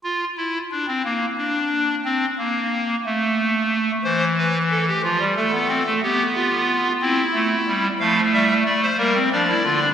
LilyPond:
<<
  \new Staff \with { instrumentName = "Pipe organ" } { \time 6/8 \key f \major \tempo 4. = 60 << { f'8 e'8 d'16 c'16 bes8 d'4 | c'8 bes4 a4. | r2. | r2. |
f''8 e''8 d''16 c''16 bes'8 d''4 | } \\ { r2. | r2. | c''8 b'8 a'16 g'16 f'8 a'4 | g'8 f'4 e'4. |
a4. bes16 c'16 d'16 e'16 f'16 d'16 | } >> }
  \new Staff \with { instrumentName = "Pipe organ" } { \clef bass \time 6/8 \key f \major r2. | r2. | e4. f16 g16 a16 b16 c'16 a16 | b4. c'8 a8 g8 |
f8 g8 a8 g8 f8 d8 | }
>>